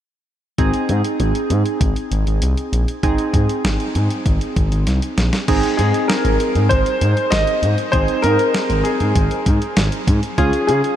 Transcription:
0.58 analog synth bass G#1, synth keys C4 D#4 G#4, kick, closed hi-hat
0.74 closed hi-hat
0.89 analog synth bass G#2, closed hi-hat
1.05 closed hi-hat
1.20 analog synth bass G#1, closed hi-hat
1.35 closed hi-hat
1.50 analog synth bass G#2, closed hi-hat
1.66 closed hi-hat
1.81 analog synth bass G#1, kick, closed hi-hat
1.96 closed hi-hat
2.11 analog synth bass G#1, closed hi-hat
2.27 analog synth bass G#1, closed hi-hat
2.42 analog synth bass C2, closed hi-hat
2.57 closed hi-hat
2.73 analog synth bass A#1, closed hi-hat
2.88 closed hi-hat
3.03 analog synth bass G#1, synth keys C4 D#4 G#4, kick, closed hi-hat
3.18 closed hi-hat
3.34 analog synth bass G#2, kick, closed hi-hat
3.49 closed hi-hat
3.64 analog synth bass G#1, snare, closed hi-hat
3.80 closed hi-hat
3.95 analog synth bass G#2, closed hi-hat
4.10 closed hi-hat
4.26 analog synth bass G#1, kick, closed hi-hat
4.41 closed hi-hat
4.56 analog synth bass G#1, kick, closed hi-hat
4.72 analog synth bass G#1, closed hi-hat
4.87 analog synth bass C2, snare, closed hi-hat
5.02 closed hi-hat
5.18 analog synth bass A#1, snare, closed hi-hat
5.33 snare, closed hi-hat
5.48 analog synth bass G#1, synth keys C4 D#4 G#4, kick, closed hi-hat, crash
5.63 closed hi-hat
5.77 analog synth bass G#2, grand piano G#4, closed hi-hat
5.94 closed hi-hat
6.08 grand piano A#4, snare, closed hi-hat
6.25 analog synth bass G#1, closed hi-hat
6.40 closed hi-hat
6.55 analog synth bass G#2, closed hi-hat
6.69 analog synth bass G#1, grand piano C5, kick, closed hi-hat
6.86 closed hi-hat
7.01 analog synth bass G#2, closed hi-hat
7.17 closed hi-hat
7.30 analog synth bass G#1, grand piano D#5, snare, closed hi-hat
7.47 closed hi-hat
7.62 analog synth bass G#2, closed hi-hat
7.78 closed hi-hat
7.92 analog synth bass G#1, synth keys C4 D#4 G#4, grand piano C5, kick, closed hi-hat
8.08 closed hi-hat
8.22 analog synth bass G#2, grand piano A#4, closed hi-hat
8.39 closed hi-hat
8.54 snare, closed hi-hat
8.70 analog synth bass G#1, closed hi-hat
8.84 grand piano G#4, closed hi-hat
9.00 analog synth bass G#2, closed hi-hat
9.15 analog synth bass G#1, kick, closed hi-hat
9.31 closed hi-hat
9.46 analog synth bass G#2, kick, closed hi-hat
9.62 closed hi-hat
9.77 analog synth bass G#1, snare, closed hi-hat
9.92 closed hi-hat
10.07 analog synth bass G#2, kick, closed hi-hat
10.23 closed hi-hat
10.38 analog synth bass C#2, synth keys C#4 F4 G#4, kick, closed hi-hat
10.53 closed hi-hat
10.67 analog synth bass C#3, grand piano G#4, closed hi-hat
10.84 closed hi-hat

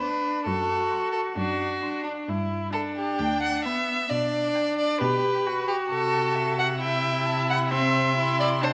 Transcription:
0.00 viola D4, violin B4 B5
0.45 cello F#2, viola F#4, violin A4
0.92 violin C6
1.12 violin A4
1.36 cello F#2, viola D4, violin F#4
1.83 viola D4, violin C6
2.04 violin D4
2.28 cello G2, viola E4
2.73 viola D4, violin A4 B5
2.96 violin G4
3.19 cello D2, violin G5
3.42 violin F#5
3.64 viola B3, violin E5 B5
4.09 cello B2, viola D4, violin D5
4.55 violin G5
4.78 violin D5
5.00 cello B2, viola G4, violin B4
5.46 viola F#4, violin G5
5.68 violin G4
5.90 cello C3, violin A4 A5
6.35 violin E5
6.59 violin F#5
6.81 viola E4, violin E5 G5
7.26 violin A5
7.49 violin F#5 B5
7.71 viola C4, violin E5 C6
8.16 viola E4, violin C6
8.40 violin D5
8.61 viola D4, violin C5 A5

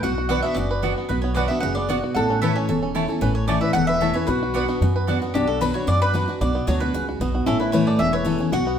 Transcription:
0.03 upright bass B1, steel-string acoustic guitar B2, resonator guitar played with a steel bar F#4, five-string banjo F#4, mandolin F#5
0.18 five-string banjo F#4
0.29 steel-string acoustic guitar F#3 B3 D4 F#4, mandolin B3 F#4 D5 F#5, five-string banjo B4
0.42 five-string banjo B3, steel-string acoustic guitar D4 F#4, mandolin E5
0.55 upright bass F#1, steel-string acoustic guitar F#2, five-string banjo F#4, mandolin D5
0.71 five-string banjo B4
0.82 steel-string acoustic guitar F#3 B3 D4 F#4, mandolin B3 F#4 D5 F#5, five-string banjo F#4
0.98 five-string banjo B3
1.09 upright bass B1, steel-string acoustic guitar B2, five-string banjo F#4, mandolin B4
1.22 five-string banjo B3, mandolin C#5
1.35 steel-string acoustic guitar F#3 B3 D4 F#4, mandolin B3 F#4 D5 F#5, five-string banjo B4
1.48 five-string banjo B3, steel-string acoustic guitar D4 F#4, mandolin E5
1.60 upright bass F#1, steel-string acoustic guitar C#3, five-string banjo F#4, mandolin F#5
1.75 five-string banjo B3, mandolin D5
1.89 steel-string acoustic guitar B2, mandolin B3 F#4 D5 F#5, five-string banjo F#4
2.04 five-string banjo F#4
2.15 upright bass A1, steel-string acoustic guitar A2, five-string banjo A4, resonator guitar played with a steel bar A4, mandolin F#5
2.30 five-string banjo C#4
2.41 steel-string acoustic guitar E3 A3 C#4 E4, mandolin A3 E4 C#5 E5 A5, five-string banjo B4
2.56 five-string banjo C#4, mandolin C#5
2.69 upright bass E1, steel-string acoustic guitar E2, five-string banjo A4
2.83 five-string banjo C#4
2.95 steel-string acoustic guitar E3 A3 C#4 E4, mandolin A3 E4 C#5 A5, five-string banjo E4
3.08 steel-string acoustic guitar C#4 E4, five-string banjo A4
3.21 upright bass A1, steel-string acoustic guitar A2, five-string banjo C#4, mandolin B4
3.35 mandolin C#5
3.48 steel-string acoustic guitar E3 A3 C#4 E4, mandolin A3 E4 C#5 D5 A5, five-string banjo C#4
3.61 steel-string acoustic guitar C#4 E4, five-string banjo B4, mandolin E5
3.73 upright bass E1, steel-string acoustic guitar E2, five-string banjo A4, mandolin F#5
3.87 five-string banjo B4, mandolin E5
4.01 steel-string acoustic guitar E3 A3 C#4 E4, mandolin A3 E4 C#5 A5, five-string banjo A4
4.14 steel-string acoustic guitar C#4 E4, five-string banjo B4, mandolin C#5
4.27 upright bass B1, steel-string acoustic guitar B2, resonator guitar played with a steel bar F#4, five-string banjo F#4, mandolin B4
4.43 five-string banjo F#4
4.54 steel-string acoustic guitar F#3 B3 D4 F#4, mandolin B3 F#4 D5 F#5, five-string banjo B4
4.68 five-string banjo B3, steel-string acoustic guitar D4 F#4
4.81 upright bass F#2, steel-string acoustic guitar F#2, five-string banjo F#4
4.96 five-string banjo B4
5.07 steel-string acoustic guitar F#3 B3 D4 F#4, mandolin B3 F#4 D5 F#5, five-string banjo F#4
5.22 five-string banjo B3, steel-string acoustic guitar D4 F#4
5.34 upright bass B1, steel-string acoustic guitar B2, resonator guitar played with a steel bar D4, five-string banjo F#4, mandolin G4
5.47 five-string banjo F#4, mandolin A4
5.61 steel-string acoustic guitar F#3 B3 D4 F#4, mandolin B4, five-string banjo B4
5.74 steel-string acoustic guitar D4 F#4, five-string banjo F#4, mandolin C#5
5.87 steel-string acoustic guitar F#2, upright bass F#2, five-string banjo F#4, mandolin D5
6.02 mandolin B4, five-string banjo B4
6.14 steel-string acoustic guitar F#3 B3 D4 F#4, five-string banjo F#4
6.28 steel-string acoustic guitar D4 F#4, five-string banjo F#4
6.41 upright bass B1, steel-string acoustic guitar B2, five-string banjo F#4, mandolin D5
6.55 five-string banjo B3
6.67 upright bass D2, steel-string acoustic guitar F#3 B3 D4 F#4, five-string banjo F#4, mandolin C#5
6.80 steel-string acoustic guitar D4 F#4, five-string banjo F#4, mandolin B4
6.94 upright bass C#2, steel-string acoustic guitar C#3, five-string banjo F#4
7.09 five-string banjo F#4
7.20 upright bass B1, steel-string acoustic guitar B2, five-string banjo B3
7.35 five-string banjo F#4
7.46 upright bass A1, steel-string acoustic guitar A2, five-string banjo C#4, resonator guitar played with a steel bar E4, mandolin A4
7.60 five-string banjo E4, mandolin B4
7.72 steel-string acoustic guitar E3 A3 C#4 E4, five-string banjo B4, mandolin C#5
7.87 five-string banjo A4, mandolin D5
7.99 upright bass E1, steel-string acoustic guitar E2, five-string banjo C#4, mandolin E5
8.13 five-string banjo B4, mandolin C#5
8.25 steel-string acoustic guitar E3 A3 C#4 E4, five-string banjo A4
8.38 steel-string acoustic guitar C#4 E4, five-string banjo C#4
8.52 upright bass B1, steel-string acoustic guitar B2, resonator guitar played with a steel bar F#4, five-string banjo F#4, mandolin F#5
8.67 five-string banjo B3

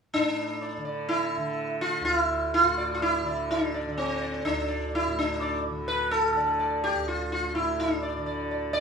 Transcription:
0.14 tanpura A2, sitar D4
0.62 sitar D5
0.77 tanpura D3
0.85 sitar D5
1.09 sitar E4
1.37 tanpura D3
1.81 sitar F4
2.00 tanpura D2
2.05 sitar F4
2.17 sitar E4
2.54 sitar F4
2.62 tanpura A2
2.78 sitar D5
2.95 sitar F4
3.02 sitar E4
3.23 tanpura D3, sitar D5
3.51 sitar D4
3.74 sitar D5
3.85 tanpura D3
3.98 sitar C4
4.21 sitar D5
4.45 tanpura D2, sitar D4
4.68 sitar D5
4.95 sitar E4
5.07 tanpura A2
5.19 sitar D4
5.42 sitar D5
5.69 tanpura D3
5.88 sitar B4
6.11 sitar A4
6.33 tanpura D3
6.37 sitar D5
6.60 sitar D5
6.84 sitar G4
6.94 tanpura D2
7.08 sitar F4
7.32 sitar F4
7.55 tanpura A2, sitar E4
7.80 sitar D4
8.03 sitar D5
8.17 tanpura D3
8.26 sitar D5
8.51 sitar D5
8.73 sitar D5

